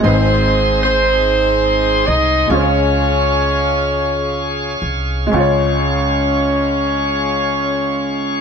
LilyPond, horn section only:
\new Staff \with { instrumentName = "Horn section" } { \time 6/8 \key des \major \tempo 4. = 43 <c' ees' aes' c''>4 <c' ees' aes' c''>4. <ees' ees''>8 | <des' f' aes' des''>2~ <des' f' aes' des''>8 r8 | <des' des''>2. | }